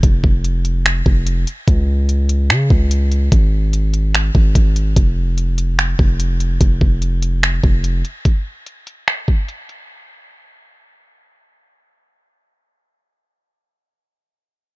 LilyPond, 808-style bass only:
\new Staff \with { instrumentName = "808-style bass" } { \clef bass \time 4/4 \key f \minor \tempo 4 = 146 f,,8 f,,2 f,,4 r8 | des,2 des8 des,4. | aes,,2~ aes,,8 aes,,8 aes,,4 | f,,2~ f,,8 f,,4. |
f,,8 f,,2 f,,4 r8 | r1 | r1 | r1 |
r1 | }